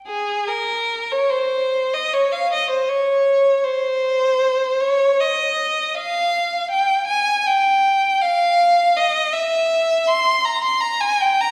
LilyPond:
\new Staff \with { instrumentName = "Violin" } { \time 6/8 \key f \minor \tempo 4. = 52 aes'8 bes'8. des''16 c''8. ees''16 des''16 f''16 | ees''16 c''16 des''4 c''4. | des''8 ees''4 f''4 g''8 | aes''8 g''4 f''4 ees''8 |
e''4 c'''8 bes''16 c'''16 bes''16 aes''16 g''16 bes''16 | }